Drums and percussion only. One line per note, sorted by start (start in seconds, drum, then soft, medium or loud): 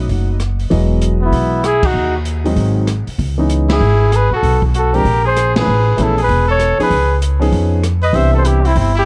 0.09 kick soft
0.09 open hi-hat soft
0.40 cross-stick soft
0.40 closed hi-hat soft
0.59 open hi-hat soft
0.71 kick soft
0.71 open hi-hat soft
1.02 closed hi-hat medium
1.32 kick soft
1.32 open hi-hat soft
1.64 cross-stick medium
1.64 closed hi-hat medium
1.83 kick medium
1.83 crash medium
2.25 closed hi-hat medium
2.46 open hi-hat soft
2.56 kick soft
2.56 open hi-hat soft
2.87 cross-stick medium
2.87 closed hi-hat medium
3.07 open hi-hat soft
3.19 kick soft
3.19 open hi-hat soft
3.50 closed hi-hat medium
3.70 snare medium
3.70 ride medium
4.12 cross-stick medium
4.12 closed hi-hat medium
4.43 kick soft
4.43 open hi-hat soft
4.62 kick medium
4.74 closed hi-hat soft
4.94 open hi-hat soft
5.05 kick soft
5.05 open hi-hat soft
5.37 cross-stick medium
5.37 closed hi-hat medium
5.56 snare medium
5.56 ride medium
5.98 closed hi-hat medium
6.18 open hi-hat soft
6.29 kick soft
6.29 open hi-hat soft
6.60 cross-stick medium
6.60 closed hi-hat medium
6.80 open hi-hat soft
6.91 kick soft
6.91 open hi-hat soft
7.22 closed hi-hat medium
7.42 open hi-hat soft
7.52 kick soft
7.52 open hi-hat soft
7.84 cross-stick medium
7.84 closed hi-hat medium
8.03 open hi-hat soft
8.14 kick soft
8.14 open hi-hat soft
8.45 closed hi-hat medium
8.65 open hi-hat soft
8.76 kick soft
8.76 open hi-hat soft